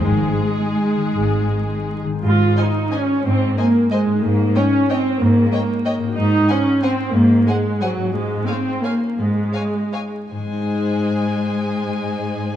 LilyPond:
<<
  \new Staff \with { instrumentName = "Violin section" } { \time 3/4 \key aes \major \tempo 4 = 175 aes'2.~ | aes'2~ aes'8 r8 | r4 aes''4 aes''4 | r4 aes''4 aes''4 |
r4 g''4 g''4 | r4 g''4 g''4 | r4 aes''4 aes''4 | r4 aes''4 aes''4 |
r4 aes''4 aes''4 | r4 aes''4 aes''4 | aes''2.~ | aes''2. | }
  \new Staff \with { instrumentName = "Violin section" } { \time 3/4 \key aes \major aes'2.~ | aes'2~ aes'8 r8 | r4 <c'' ees''>4 <c'' ees''>4 | r4 <c'' ees''>4 <c'' ees''>4 |
r4 <des'' ees''>4 <des'' ees''>4 | r4 <des'' ees''>4 <des'' ees''>4 | r4 <c'' ges''>4 <c'' ges''>4 | r4 <c'' ges''>4 <c'' ges''>4 |
r4 <des'' f''>4 <des'' f''>4 | r4 <des'' f''>4 <des'' f''>4 | <aes' c''>2.~ | <aes' c''>2. | }
  \new Staff \with { instrumentName = "Harp" } { \time 3/4 \key aes \major << { <aes, ees'>8 aes'8 ees'8 c'8 ees'8 ees8 | aes,8 aes'8 ees'8 c'8 ees'8 ees8 | <aes, c' ees' aes'>2.~ | <aes, c' ees' aes'>2. |
<aes, des' ees' g'>2.~ | <aes, des' ees' g'>2. | <aes, c' ges' aes'>2.~ | <aes, c' ges' aes'>2. |
<aes, des' f' aes'>2.~ | <aes, des' f' aes'>2.~ | <aes, des' f' aes'>2.~ | <aes, des' f' aes'>2. | } \\ { r2. | r2. | r2. | r2. |
r2. | r2. | r2. | r2. |
r2. | r2. | <aes, aes c' ees' aes' ees''>2.~ | <aes, aes c' ees' aes' ees''>2. | } >> }
  \new Staff \with { instrumentName = "Viola section" } { \time 3/4 \key aes \major aes2.~ | aes2~ aes8 r8 | f'4 ees'4 des'4 | c'4 bes4 aes4 |
bes4 des'4 c'4 | bes2~ bes8 r8 | ees'4 des'4 c'4 | bes4 aes4 ges4 |
aes4 c'4 bes4 | aes2~ aes8 r8 | aes2.~ | aes2. | }
  \new Staff \with { instrumentName = "Cello section" } { \clef bass \time 3/4 \key aes \major aes,4 r2 | aes,4 r2 | aes,4 r2 | aes,4 r2 |
aes,4 r2 | aes,4 r2 | aes,4 r2 | aes,4 r2 |
aes,4 r2 | aes,4 r2 | aes,2.~ | aes,2. | }
  \new Staff \with { instrumentName = "Double bass section" } { \clef bass \time 3/4 \key aes \major aes,,4 r2 | aes,,4 r2 | r2. | r2. |
r2. | r2. | r2. | r2. |
r2. | r2. | r2. | r2. | }
>>